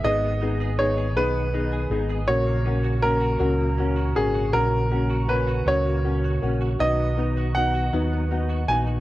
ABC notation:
X:1
M:6/8
L:1/16
Q:3/8=53
K:F#mix
V:1 name="Grand piano"
d4 c2 B4 z2 | c4 A6 G2 | A4 B2 c4 z2 | d4 f6 g2 |]
V:2 name="Clean electric guitar"
[B,G] B, D G D G B, B, D G D G | F, A, C F C F F, A, C F C F | F,2 C F C F F, A, C F C F | F, B, D F D F F, B, D F D F |]
V:3 name="Upright piano"
[B,DG]2 [B,DG]2 [B,DG]2 [B,DG]2 [B,DG]2 [B,DG]2 | [A,CF]2 [A,CF]2 [A,CF]2 [A,CF]2 [A,CF]2 [A,CF]2 | [A,CF]2 [A,CF]2 [A,CF]2 [A,CF]2 [A,CF]2 [A,CF]2 | [B,DF]2 [B,DF]2 [B,DF]2 [B,DF]2 [B,DF]2 [B,DF]2 |]
V:4 name="Tonewheel organ"
G12 | F12- | F12- | F12 |]
V:5 name="Tonewheel organ" clef=bass
[D,B,]12 | [A,,C,]12- | [A,,C,]12 | [D,B,]12 |]
V:6 name="Fingered electric bass" clef=bass
G,,,6 B,,,4 G,,,2 | A,,,6 C,,4 G,,,2 | A,,,6 C,,4 A,,,2 | B,,,6 D,,4 A,,,2 |]